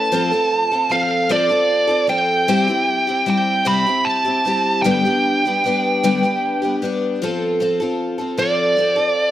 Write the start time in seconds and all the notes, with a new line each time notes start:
Already playing: A3 C#4 E4 B4 A5
0.12 F3 C4 F4 A4
0.32 C4 F4 A4
0.72 C4 F4 A4
0.90 F3 C4 F4 A4 F5
1.29 F3 C4 F4 A4 D5
1.49 C4 F4 A4
1.87 C4 F4 A4
2.07 F3 C4 F4 A4 G5
2.48 C3 G3 C4 E4 G4
2.68 C4 E4 G4
3.07 C4 E4 G4
3.26 G3 C4 E4 G4 G5
3.65 C3 G3 C4 E4 G4 B5
3.86 C4 E4 G4
4.05 A5
4.25 C4 E4 G4
4.45 G3 C4 E4 G4
4.82 G2 D3 G3 B3 D4 G4 G5
5.05 G3 B3 D4 G4
5.45 G3 B3 D4 G4
5.64 G3 B3 D4 G4
6.03 G2 D3 G3 B3 D4 G4
6.23 G3 B3 D4 G4
6.62 G3 B3 D4 G4
6.82 G3 B3 D4 G4
7.22 F3 C4 F4 A4
7.60 F3 C4 F4 A4
7.80 C4 F4 A4
8.18 C4 F4 A4
8.38 F3 C4 F4 A4 D5
8.77 F3 C4 F4 A4
8.96 C4 F4 A4